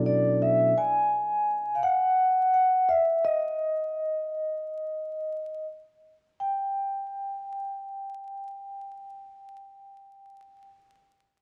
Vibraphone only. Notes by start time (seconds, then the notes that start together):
0.06 D5
0.42 E5
0.78 G#5
1.75 F5
1.83 F#5
2.54 F#5
2.89 E5
3.25 D#5
6.40 G5